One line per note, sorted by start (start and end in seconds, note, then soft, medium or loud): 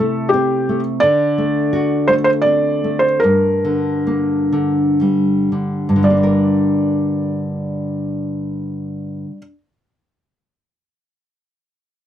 0.00 0.98 C3 medium
0.00 0.68 A3 soft
0.00 0.98 E4 medium
0.00 0.28 A4 medium
0.29 0.79 G4 medium
0.33 1.00 C4 soft
0.69 1.02 A3 soft
1.00 3.20 D3 medium
1.00 2.11 D5 medium
1.38 2.08 A3 soft
1.73 3.19 F#4 medium
2.08 2.83 A3 soft
2.08 2.13 C5 medium
2.24 2.29 C5 medium
2.42 3.03 D5 medium
2.46 3.21 C4 soft
2.84 3.22 A3 soft
2.99 3.20 C5 medium
3.20 4.94 A#4 medium
3.24 5.88 G2 medium
3.65 4.51 D3 soft
4.07 6.01 A#3 soft
4.53 5.51 D3 soft
5.01 6.01 G3 soft
5.52 5.95 D3 soft
5.89 9.23 G2 soft
5.96 9.30 D3 soft
6.03 9.37 G3 soft
6.03 9.39 D5 medium
6.10 9.45 A#3 soft
6.17 9.52 D4 soft
6.23 9.58 A#4 medium